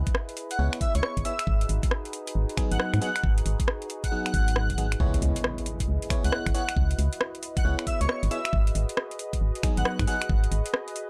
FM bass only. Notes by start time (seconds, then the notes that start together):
0.59 C#2
0.95 C#2
1.17 G#1
1.47 G#1
1.69 G#1
2.35 G#1
2.72 G#1
2.94 G#2
3.24 G#1
3.46 G#1
4.34 G#1
4.78 G#1
5.00 C#2
5.22 C#2
5.88 C#2
6.24 C#2
6.46 G#1
6.77 C#2
6.99 C#2
7.65 C#2
8.01 C#2
8.23 G#1
8.53 G#1
8.75 G#1
9.41 G#1
9.77 G#1
9.99 G#2
10.30 G#1
10.52 G#1